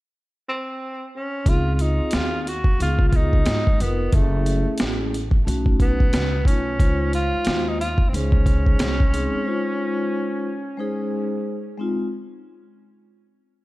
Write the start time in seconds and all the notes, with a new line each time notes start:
0.49 C4
1.16 C#4
1.44 C#2 C4 D#4 F4 G#4, kick, closed hi-hat
1.49 F4
1.74 F4
1.79 D#4, closed hi-hat
2.00 muted upright bass stroke
2.11 D#2 F4, snare, closed hi-hat
2.42 F4
2.47 F#4, closed hi-hat
2.64 kick
2.78 C#2 B3 D#4 F4 G#4, closed hi-hat
2.99 kick
3.08 F4
3.13 D#4, kick, closed hi-hat
3.33 kick
3.46 G#2, snare, closed hi-hat
3.67 kick
3.79 F1 B3 D#4 F4 A#4, closed hi-hat
4.12 F#1 A3 C#4 E4 G#4, kick, closed hi-hat
4.46 closed hi-hat
4.67 muted upright bass stroke
4.78 A1, snare, closed hi-hat
5.14 closed hi-hat
5.31 kick
5.45 B1 A3 C#4 D#4 F#4, closed hi-hat
5.66 kick
5.80 B3, kick, closed hi-hat
6.00 kick
6.13 C#2, snare, closed hi-hat
6.45 B1 A3 C#4 D#4 F4, kick, closed hi-hat
6.78 C#2 G#3 D#4 F4 C5, kick, closed hi-hat
7.13 F4, closed hi-hat
7.34 muted upright bass stroke
7.45 D#2, snare, closed hi-hat
7.68 D#4
7.81 F4, closed hi-hat
7.98 kick
8.09 G#3 C4 C5
8.13 C#2 C#4 D#4 G#4, closed hi-hat
8.32 kick
8.46 kick, closed hi-hat
8.66 kick
8.79 C2, snare, closed hi-hat
9.00 kick
9.11 G#3 C4 D#4 G#4, closed hi-hat
9.33 muted upright bass stroke
9.45 G#3 D#4 F4 C5
10.77 G#3 D#4 G#4 C5
11.78 G#3 C4 D#4 F4